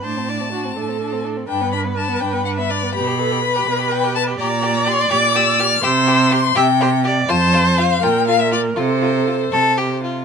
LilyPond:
<<
  \new Staff \with { instrumentName = "Violin" } { \time 6/8 \key g \major \tempo 4. = 82 a''2~ a''8 r8 | g''8 b''8 a''8 g''8 fis''16 e''16 d''8 | b''2 g''8 a''8 | \key f \major bes''4 c'''8 d'''8 e'''8 f'''8 |
e'''4 c'''8 g''4 r8 | a''4 f''8 g''8 f''16 e''16 d''8 | c''2~ c''8 r8 | }
  \new Staff \with { instrumentName = "Viola" } { \time 6/8 \key g \major c''8 d''8 fis'8 a'4. | b'2. | g'8 a'8 b'2 | \key f \major d''2. |
c''4. e''8 c''8 d''8 | c''4. bes'4. | a'2~ a'16 r8. | }
  \new Staff \with { instrumentName = "Violin" } { \time 6/8 \key g \major d'16 c'16 d'16 c'16 d'16 c'16 d'16 c'16 d'16 c'16 d'16 c'16 | d'16 b16 d'16 b16 d'16 b16 d'16 b16 d'16 b16 d'16 b16 | b'16 g'16 b'16 g'16 b'16 g'16 b'16 g'16 b'16 g'16 b'16 g'16 | \key f \major g'8 g'8 g'8 g'8 g'8 g'8 |
g'8 g'8 g'8 g'8 g'8 g'8 | f'8 f'8 f'8 f'8 f'8 f'8 | f'8 f'8 f'8 a'8 g'8 f'8 | }
  \new Staff \with { instrumentName = "Cello" } { \clef bass \time 6/8 \key g \major a,4. a,4. | g,4. g,4. | b,4. b,4. | \key f \major bes,4. bes,4. |
c4. c4. | f,4. bes,4. | c4. c4. | }
>>